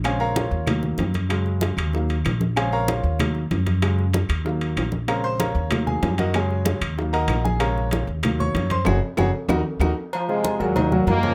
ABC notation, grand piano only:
X:1
M:4/4
L:1/8
Q:1/4=190
K:Ebdor
V:1 name="Grand piano"
[Adfa] [Bdfb] [FBdf]2 z4 | z8 | [Adfa] [Bdfb] [FBdf]2 z4 | z8 |
[Bdfb] [cc'] [Bdfb]2 z [Aa]2 [GBeg] | [Ada]3 z2 [Begb]2 [Aa] | [Bdfb]3 z2 [dd']2 [cc'] | [GAd] z [GAd] z [EGB] z [EGB] z |
z [F,FA]2 [G,GB] [E,Ee] [G,GB]2 [D,Dd] |]
V:2 name="Grand piano" clef=bass
[D,A,C]3 z [E,G,B,]3 z | [D,G,A,]4 [E,G,B,] z3 | [D,A,C]3 z [E,G,B,] z3 | [D,G,A,] z3 [E,G,B,]3 z |
[D,A,C]3 z [E,G,B,]4 | [D,G,A,]3 z [E,G,B,]4 | [C,D,A,]3 z [E,G,B,]3 z | z8 |
z8 |]